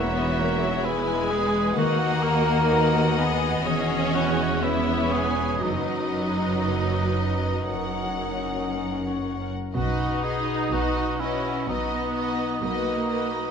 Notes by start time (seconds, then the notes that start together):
Already playing: E1 E2 E3 A#3 B3 D#4 E4 F#4 G#4 B4 C#5 D#5 E5
0.16 B3
0.23 D#4
0.39 A#3
0.54 G#4
0.62 F#3
0.84 G#3 E4 B4 G#5
1.15 D#5
1.30 G#4 B4
1.46 B4
1.76 D#2 D#3 A#3 F#4 D#5 F#5
2.07 D#4
2.23 A#4
2.38 F#4
2.69 F#4 B4 F#5
3.01 D#5
3.17 B3 G#4
3.33 B4
3.64 E1 E2 E3 C#4 F#4 G#4 C#5
3.98 C#4
4.14 E4 F#4
4.30 G#4
4.63 B3 E4 B4 C#5 E5
4.97 C#5
5.13 G#4 G#5
5.63 F#1 F#2 F#3 D#4 B4 D#5
5.99 D#4
6.32 F#4
6.66 B4
7.01 D#5
7.35 B4
7.69 F#1 F#2 C#4 A#4 F#5
8.04 C#4
8.38 F#4
8.72 A#4
9.06 C#5
9.41 A#4
9.75 B1 B2 D#4 F#4 B4 D#5
10.08 D#4
10.23 F#4 G#4 B4 D#5
10.40 F#4
10.72 B1 B2 F#4 B4 D#5
11.04 D#5
11.18 C#4 E4 F#4 B4 D#5
11.37 B4
11.66 B1 B2 F#3 B3 D#4 F#4 B4 D#5
12.01 D#4
12.14 F#4 B4 D#5
12.33 F#4
12.61 B1 B2 A#3 F#4 B4 D#5
12.96 D#5
13.10 F#4 B4 D#5
13.27 B4